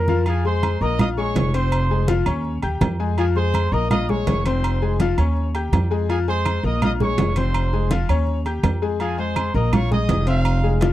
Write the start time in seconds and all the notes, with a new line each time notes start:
Already playing: F2 A#4
0.08 F3 F4 F5, high conga
0.26 F3 F4 G#4 F5 G#5, high conga, low agogo
0.45 G#3 G#4 C5 G#5 C6, high conga
0.63 high conga, low timbale, low agogo
0.81 A#1 A#3 A#4 D#5 A#5 D#6, high conga
0.99 F4 D#5 F5 D#6 F6, high conga, low conga, low agogo
1.17 G#3 G#4 C#5 G#5 C#6, high conga
1.36 F1, high conga, low timbale, low agogo
1.54 C4 C5 C6, low agogo
1.72 high conga, low agogo
1.91 G#3 G#4 G#5, high conga
2.08 F3 F4 F5, high conga, low timbale, low agogo
2.26 D#2 C#4 C#5 C#6, high conga, low agogo
2.45 high conga
2.63 D#2 G4 G5 G6, high conga, low agogo
2.81 F2, high conga, low timbale, low agogo
3.00 G#3 G#4 G#5
3.18 F3 F4 G#4 F5 G#5, high conga, low agogo
3.36 G#3 G#4 C5 G#5 C6, high conga
3.54 high conga, low timbale, low agogo
3.72 A#1 A#3 A#4 D#5 A#5 D#6, high conga
3.90 F4 D#5 F5 D#6 F6, high conga, low conga, low agogo
4.09 G#3 G#4 C#5 G#5 C#6, high conga, low conga
4.27 F1, high conga, low timbale, low agogo
4.46 C4 C5 C6, high conga, low agogo
4.64 high conga, low agogo
4.82 G#3 G#4 G#5, high conga
5.00 F3 F4 F5, high conga, low timbale, low agogo
5.18 D#2 C#4 C#5 C#6, high conga, low agogo
5.37 high conga
5.55 G4 G5 G6, high conga, low agogo
5.72 F2, high conga, low timbale, low agogo
5.91 G#3 G#4 G#5
6.09 F3 F4 G#4 F5 G#5, high conga, low agogo
6.27 G#3 G#4 C5 G#5 C6, high conga
6.45 high conga, low timbale, low agogo, claves
6.63 A#1 A#3 A#4 D#5 A#5 D#6, high conga
6.82 F4 D#5 F5 D#6 F6, high conga, low conga, low agogo, claves
7.00 G#3 G#4 C#5 G#5 C#6, high conga, low conga
7.18 F1, high conga, low timbale, low agogo
7.36 C4 C5 C6, high conga, low agogo
7.54 high conga, low agogo, claves
7.73 G#3 G#4 G#5, high conga
7.91 F3 F4 F5, high conga, low timbale, low agogo
8.09 D#2 C#4 C#5 C#6, high conga, low agogo, claves
8.27 high conga
8.45 G4 G5 G6, high conga, low agogo
8.63 F2, high conga, low timbale, low agogo, claves
8.82 G#3 G#4 G#5
9.00 F3 F4 G#4 F5 G#5, high conga, low agogo
9.18 G#3 G#4 C5 G#5 C6, high conga
9.36 high conga, low timbale, low agogo, claves
9.54 A#1 A#3 A#4 D#5 A#5 D#6, high conga
9.73 F4 C#5 F5 C#6 F6, high conga, low conga, low agogo, claves
9.91 G#3 G#4 D#5 G#5 D#6, high conga, low conga
10.09 F1, high conga, low timbale, low agogo
10.27 C4 C5 F5 C6, low agogo
10.45 high conga, low agogo, claves
10.64 G#3 G#4 G#5, high conga
10.81 F3 F4 F5, high conga, low timbale, low agogo